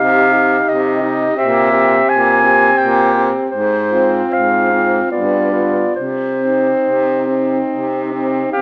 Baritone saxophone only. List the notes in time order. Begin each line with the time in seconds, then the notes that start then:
Already playing: C3
0.67 C3
1.38 A#2
2.09 A#2
2.78 A#2
3.49 G#2
4.32 G#2
5.11 G2
5.94 C3
6.83 C3
7.71 C3
8.53 D#2